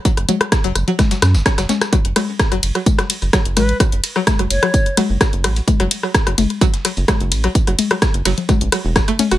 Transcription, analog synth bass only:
\new Staff \with { instrumentName = "Analog synth bass" } { \clef bass \time 4/4 \key fis \minor \tempo 4 = 128 r16 fis,,16 r8. fis,,16 fis,,16 r8. fis,16 fis,,16 r16 fis,,16 r8 | r16 fis,,16 r8. fis,,16 fis,,16 r4 fis,,16 r16 fis,,16 a,,16 r16 | r16 fis,,16 r8. fis,,16 fis,,16 r4 fis,,16 r16 fis,,16 a,,16 r16 | r16 fis,,16 r8. fis,,16 fis,,16 r4 fis,,16 r16 fis,,16 a,,16 r16 |
r16 fis,,16 r8. fis,,16 fis,,16 r8 a,,16 r16 e,,16 r8. e,,16 | }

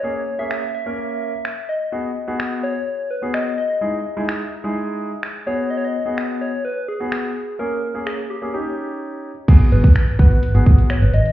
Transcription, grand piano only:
\new Staff \with { instrumentName = "Grand piano" } { \time 4/4 \key gis \minor \tempo 4 = 127 <ais cis' gis'>16 r8 <ais cis' gis'>8 r8 <ais cis' ais'>4 r4 r16 | <b fis' gis'>16 r8 <b fis' gis'>4 r4 <b fis' gis'>8 r8. | <gis dis' e' gis'>16 r8 <gis dis' e' gis'>8 r8 <gis dis' e' gis'>4 r8. <b fis' gis'>8~ | <b fis' gis'>8 r16 <b fis' gis'>4 r4 <b fis' gis'>8 r8. |
<ais cis' gis'>16 r8 <ais cis' gis'>8 r8 <ais cis' gis'>16 <cis' dis' g'>4. r8 | <b fis' gis'>8. r8. <b fis' b'>16 r8 <b fis' gis'>8. r4 | }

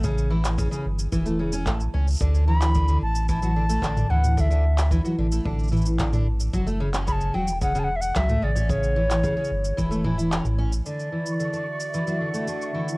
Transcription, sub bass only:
\new Staff \with { instrumentName = "Sub bass" } { \clef bass \time 4/4 \key d \major \tempo 4 = 111 a,,4~ a,,16 r16 g,,8 e,,4 a,,8 cis,8 | d,4. a,,4. a,,8 d,8~ | d,4~ d,16 r16 a,,8 a,,2 | fis,,4. e,,4. cis,8 a,,8~ |
a,,4~ a,,16 r16 g,,8 e,,8 e,,8. a,,8. | r1 | }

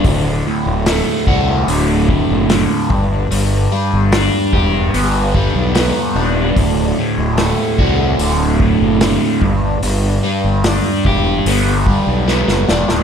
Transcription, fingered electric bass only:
\new Staff \with { instrumentName = "Fingered electric bass" } { \clef bass \time 4/4 \key g \lydian \tempo 4 = 74 d,,8 r16 d,,8 r16 c,8 d,,8. fis,,8 r16 g,,8 | g,,8 r16 g,,8 r16 e,,8 g,,8. b,,8 r16 ees,,8 | d,,8 r16 d,,8 r16 c,8 d,,8. fis,,8 r16 g,,8 | g,,8 r16 g,,8 r16 e,,8 g,,8. b,,8 fis,,16 e,,16 d,,16 | }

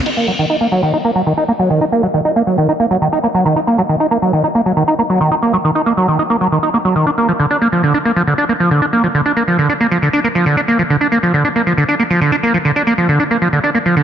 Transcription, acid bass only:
\new Staff \with { instrumentName = "Acid bass" } { \clef bass \time 4/4 \key ees \minor \tempo 4 = 137 ees'16 bes16 ges16 ees16 ees'16 bes16 ges16 ees16 ees'16 bes16 ges16 ees16 ees'16 bes16 ges16 ees16 | ees'16 bes16 ges16 ees16 ees'16 bes16 ges16 ees16 ees'16 bes16 ges16 ees16 ees'16 bes16 ges16 ees16 | ees'16 bes16 ges16 ees16 ees'16 bes16 ges16 ees16 ees'16 bes16 ges16 ees16 ees'16 bes16 ges16 ees16 | ees'16 bes16 ges16 ees16 ees'16 bes16 ges16 ees16 ees'16 bes16 ges16 ees16 ees'16 bes16 ges16 ees16 |
d'16 bes16 f16 d16 d'16 bes16 f16 d16 d'16 bes16 f16 d16 d'16 bes16 f16 d16 | d'16 bes16 f16 d16 d'16 bes16 f16 d16 d'16 bes16 f16 d16 d'16 bes16 f16 d16 | d'16 bes16 f16 d16 d'16 bes16 f16 d16 d'16 bes16 f16 d16 d'16 bes16 f16 d16 | d'16 bes16 f16 d16 d'16 bes16 f16 d16 d'16 bes16 f16 d16 d'16 bes16 f16 d16 | }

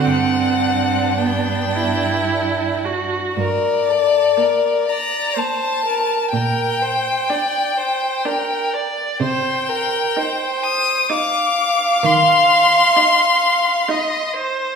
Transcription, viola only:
\new Staff \with { instrumentName = "Viola" } { \time 3/4 \key g \major \tempo 4 = 63 c'4 b8 e'4 fis'8 | \key g \minor r4 bes4 bes4 | r4 d'4 d'4 | r4 ees'4 ees'4 |
r4 ees'4 ees'4 | }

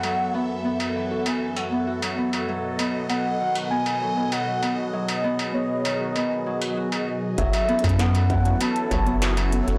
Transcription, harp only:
\new Staff \with { instrumentName = "Harp" } { \time 4/4 \key fis \dorian \tempo 4 = 98 fis16 r16 b16 r16 b16 r16 e16 fis'16 b16 r16 fis16 b16 fis'16 fis16 b16 fis'16 | fis16 r16 b16 r16 b16 r16 dis16 fis'16 b16 r16 fis16 b16 fis'16 fis16 b16 fis'16 | fis16 r16 b16 r16 b16 r16 dis16 fis'16 b16 r16 fis16 r16 fis'16 fis'16 r8 | fis16 r16 b16 r16 b16 r16 e16 fis'16 b16 r16 fis16 b16 fis'16 fis16 b16 fis'16 | }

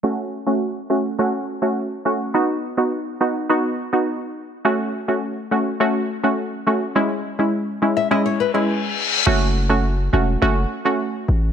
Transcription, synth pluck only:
\new Staff \with { instrumentName = "Synth pluck" } { \time 4/4 \key fis \dorian \tempo 4 = 104 <a cis' fis'>16 r8 <a cis' fis'>16 r8 <a cis' fis'>16 r16 <a cis' fis'>16 r8 <a cis' fis'>16 r8 <a cis' fis'>16 r16 | <b dis' fis'>16 r8 <b dis' fis'>16 r8 <b dis' fis'>16 r16 <b dis' fis'>16 r8 <b dis' fis'>16 r4 | <a cis' fis'>16 r8 <a cis' fis'>16 r8 <a cis' fis'>16 r16 <a cis' fis'>16 r8 <a cis' fis'>16 r8 <a cis' fis'>16 r16 | <gis cis' e'>16 r8 <gis cis' e'>16 r8 <gis cis' e'>16 r16 <gis cis' e'>16 r8 <gis cis' e'>16 r4 |
<a cis' fis'>8. <a cis' fis'>16 r8 <a cis' fis'>16 r16 <a cis' fis'>16 r8 <a cis' fis'>16 r4 | }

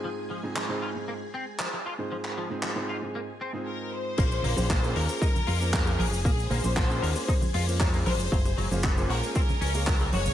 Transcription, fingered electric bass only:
\new Staff \with { instrumentName = "Fingered electric bass" } { \clef bass \time 4/4 \key bes \minor \tempo 4 = 116 r1 | r1 | bes,,8 bes,,16 bes,,8. ees,16 r8. f,4 bes,,16 f,,16 | bes,,8 bes,,16 bes,,8. ees,16 r8. f,4 bes,,16 f,,16 |
ges,,8 ges,,16 ges,,8. bes,,16 r8. des,4 ges,,16 des,16 | }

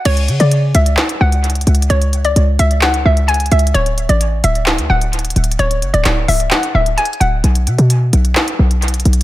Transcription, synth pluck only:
\new Staff \with { instrumentName = "Synth pluck" } { \time 4/4 \key cis \phrygian \tempo 4 = 130 cis''8. d''8. e''4 fis''4. | cis''8. d''8. e''8 fis''8 e''8 gis''8 e''8 | cis''8. d''8. e''4 fis''4. | cis''8. d''8. e''8 fis''8 e''8 gis''8 fis''8 |
r1 | }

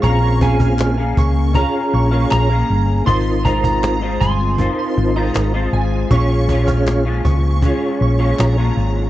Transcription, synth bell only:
\new Staff \with { instrumentName = "Synth bell" } { \time 4/4 \key bes \minor \tempo 4 = 79 des'''8 r16 f'''16 r8 des'''8 r8 des'''8 bes''8. r16 | c'''16 r8 bes''8 r16 aes''16 r8 c'''16 r16 bes''16 r8 aes''16 r16 | des'''8 r16 f'''16 r8 des'''8 r8 des'''8 bes''8. r16 | }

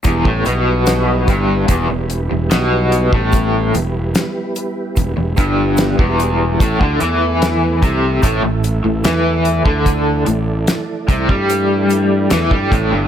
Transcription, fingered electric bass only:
\new Staff \with { instrumentName = "Fingered electric bass" } { \clef bass \time 4/4 \key e \minor \tempo 4 = 74 e,,16 a,,16 b,,4 g,,8 e,,16 e,,8 e,,16 b,,8. a,,16~ | a,,8 e,,8 r4 e,,16 e,,16 g,,8. e,,8. | a,,16 d,16 e,4 c,8 a,,16 a,,8 a,,16 e,8. d,16~ | d,8 a,,8 r8 c,16 g,4~ g,16 e,16 g,16 a,,16 g,,16 | }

